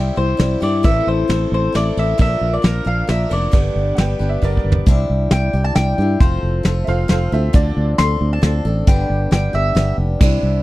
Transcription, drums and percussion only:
0.40 snare medium
0.40 ride medium
0.62 ride medium
0.84 kick loud
0.84 ride medium
1.30 snare medium
1.30 ride medium
1.75 snare medium
1.75 ride medium
1.97 ride medium
2.19 kick loud
2.19 ride medium
2.64 snare medium
2.64 ride medium
3.09 snare medium
3.09 ride medium
3.31 ride medium
3.53 kick loud
3.53 ride medium
3.98 snare medium
3.98 ride medium
4.42 kick medium
4.57 kick medium
4.72 floor tom medium
4.86 kick loud
4.86 closed hi-hat medium
5.31 snare medium
5.31 closed hi-hat medium
5.76 snare medium
5.76 closed hi-hat medium
6.20 kick loud
6.20 closed hi-hat medium
6.65 snare medium
6.65 closed hi-hat medium
7.09 snare medium
7.09 closed hi-hat medium
7.54 kick loud
7.54 closed hi-hat medium
7.98 snare medium
7.98 closed hi-hat medium
8.43 snare medium
8.43 closed hi-hat medium
8.87 kick loud
8.87 closed hi-hat medium
9.32 snare medium
9.32 closed hi-hat medium
9.77 snare medium
9.77 closed hi-hat medium
10.21 kick loud
10.21 crash loud

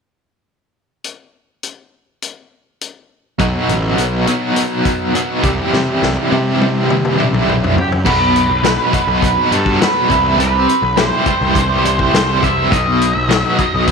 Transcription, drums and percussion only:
1.04 closed hi-hat soft
1.63 closed hi-hat soft
2.22 closed hi-hat medium
2.81 closed hi-hat soft
3.39 kick medium
3.39 closed hi-hat medium
3.69 closed hi-hat medium
3.98 closed hi-hat medium
4.27 closed hi-hat medium
4.56 closed hi-hat medium
4.85 kick medium
4.85 closed hi-hat medium
5.15 closed hi-hat medium
5.44 kick medium
5.44 closed hi-hat medium
5.73 snare soft
6.03 snare medium
6.32 high tom medium
6.61 high tom medium
6.90 mid tom medium
7.05 mid tom medium
7.20 mid tom medium
7.34 mid tom medium
7.49 mid tom medium
7.64 floor tom medium
7.78 floor tom medium
7.92 floor tom medium
8.06 kick medium
8.06 crash medium
8.36 closed hi-hat medium
8.65 snare medium
8.65 closed hi-hat medium
8.93 kick medium
8.93 closed hi-hat medium
9.22 kick medium
9.22 closed hi-hat medium
9.52 closed hi-hat medium
9.66 kick medium
9.82 snare medium
9.82 closed hi-hat medium
10.10 kick medium
10.10 closed hi-hat medium
10.40 closed hi-hat medium
10.69 closed hi-hat medium
10.97 snare medium
10.97 closed hi-hat medium
11.26 kick medium
11.26 closed hi-hat medium
11.55 kick medium
11.55 closed hi-hat medium
11.85 closed hi-hat medium
11.99 kick medium
12.15 snare loud
12.15 closed hi-hat medium
12.43 kick medium
12.43 closed hi-hat medium
12.72 kick medium
12.72 closed hi-hat medium
13.01 closed hi-hat medium
13.31 snare loud
13.31 closed hi-hat medium
13.59 kick medium
13.59 closed hi-hat medium
13.88 kick medium
13.88 closed hi-hat medium

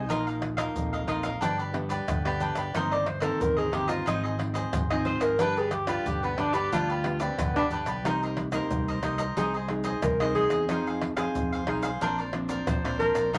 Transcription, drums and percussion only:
0.10 pandeiro medium
0.10 tamborim medium
0.10 shaker medium
0.10 surdo medium
0.27 pandeiro soft
0.27 shaker soft
0.42 pandeiro medium
0.42 tamborim medium
0.42 surdo soft
0.58 pandeiro medium
0.58 tamborim medium
0.58 shaker medium
0.58 surdo soft
0.76 pandeiro medium
0.76 shaker medium
0.76 surdo medium
0.93 pandeiro soft
0.93 shaker soft
1.08 pandeiro medium
1.08 tamborim medium
1.23 pandeiro medium
1.23 shaker medium
1.23 surdo soft
1.42 pandeiro medium
1.42 shaker medium
1.42 surdo medium
1.59 pandeiro soft
1.59 shaker soft
1.74 pandeiro medium
1.74 tamborim medium
1.90 pandeiro medium
1.90 shaker medium
1.90 surdo soft
2.08 pandeiro medium
2.08 tamborim medium
2.08 shaker medium
2.08 surdo loud
2.26 pandeiro soft
2.26 tamborim medium
2.26 shaker soft
2.40 pandeiro medium
2.40 shaker medium
2.55 pandeiro medium
2.55 tamborim medium
2.55 shaker medium
2.75 pandeiro medium
2.75 tamborim medium
2.75 shaker medium
2.75 surdo medium
2.92 pandeiro soft
2.92 shaker soft
3.06 pandeiro medium
3.06 tamborim medium
3.06 surdo soft
3.22 pandeiro medium
3.22 tamborim medium
3.22 shaker medium
3.22 surdo soft
3.41 pandeiro medium
3.41 shaker medium
3.41 surdo medium
3.58 pandeiro soft
3.58 shaker soft
3.73 pandeiro medium
3.73 tamborim medium
3.89 pandeiro medium
3.89 shaker medium
3.89 surdo soft
4.07 pandeiro medium
4.07 shaker medium
4.07 surdo medium
4.25 pandeiro soft
4.25 shaker soft
4.39 pandeiro medium
4.39 tamborim medium
4.55 pandeiro medium
4.55 shaker medium
4.55 surdo soft
4.73 pandeiro medium
4.73 tamborim medium
4.73 shaker medium
4.73 surdo loud
4.91 pandeiro soft
4.91 tamborim medium
4.91 shaker soft
5.05 pandeiro medium
5.21 pandeiro medium
5.21 tamborim medium
5.21 shaker medium
5.39 pandeiro medium
5.39 tamborim medium
5.39 shaker medium
5.39 surdo medium
5.57 pandeiro soft
5.57 shaker soft
5.71 pandeiro medium
5.71 tamborim medium
5.71 shaker medium
5.71 surdo soft
5.87 pandeiro medium
5.87 tamborim medium
5.87 shaker medium
5.87 surdo soft
6.06 pandeiro medium
6.06 shaker medium
6.06 surdo medium
6.24 pandeiro soft
6.24 shaker soft
6.38 pandeiro medium
6.38 tamborim medium
6.54 pandeiro medium
6.54 shaker medium
6.54 surdo soft
6.72 pandeiro medium
6.72 shaker medium
6.72 surdo medium
6.90 pandeiro soft
6.90 shaker soft
7.04 pandeiro medium
7.04 tamborim medium
7.20 pandeiro medium
7.20 shaker medium
7.20 surdo soft
7.39 pandeiro medium
7.39 tamborim medium
7.39 shaker medium
7.39 surdo loud
7.56 pandeiro soft
7.56 tamborim medium
7.56 shaker soft
7.71 pandeiro medium
7.71 shaker medium
7.71 surdo soft
7.86 pandeiro medium
7.86 tamborim medium
7.86 shaker medium
8.05 pandeiro medium
8.05 tamborim medium
8.05 shaker medium
8.05 surdo medium
8.23 pandeiro soft
8.23 shaker soft
8.37 pandeiro medium
8.37 tamborim medium
8.37 surdo soft
8.52 pandeiro medium
8.52 tamborim medium
8.52 shaker medium
8.52 surdo soft
8.71 pandeiro medium
8.71 shaker medium
8.71 surdo medium
8.88 pandeiro soft
8.88 shaker soft
9.03 pandeiro medium
9.03 tamborim medium
9.03 shaker medium
9.19 pandeiro medium
9.19 shaker medium
9.19 surdo soft
9.37 pandeiro medium
9.37 shaker medium
9.37 surdo medium
9.54 pandeiro soft
9.54 shaker soft
9.68 pandeiro medium
9.68 tamborim medium
9.84 pandeiro medium
9.84 shaker medium
9.84 surdo soft
10.02 pandeiro medium
10.02 tamborim medium
10.02 shaker medium
10.02 surdo loud
10.20 pandeiro soft
10.20 tamborim medium
10.20 shaker soft
10.35 pandeiro medium
10.50 pandeiro medium
10.50 tamborim medium
10.50 shaker medium
10.69 pandeiro medium
10.69 tamborim medium
10.69 shaker medium
10.69 surdo medium
10.87 pandeiro soft
10.87 shaker soft
11.02 pandeiro medium
11.02 tamborim medium
11.02 surdo soft
11.17 pandeiro medium
11.17 tamborim medium
11.17 shaker medium
11.17 surdo soft
11.35 pandeiro medium
11.35 shaker medium
11.35 surdo medium
11.53 pandeiro soft
11.53 shaker soft
11.67 pandeiro medium
11.67 tamborim medium
11.83 pandeiro medium
11.83 shaker medium
11.83 surdo soft
12.01 pandeiro medium
12.01 shaker medium
12.01 surdo medium
12.18 pandeiro soft
12.18 shaker soft
12.33 pandeiro medium
12.33 tamborim medium
12.49 pandeiro medium
12.49 shaker medium
12.49 surdo soft
12.67 pandeiro medium
12.67 tamborim medium
12.67 shaker medium
12.67 surdo loud
12.85 pandeiro soft
12.85 tamborim medium
12.85 shaker soft
13.00 pandeiro medium
13.00 surdo soft
13.15 pandeiro medium
13.15 tamborim medium
13.15 shaker medium
13.35 pandeiro medium
13.35 tamborim medium
13.35 shaker medium
13.35 surdo medium

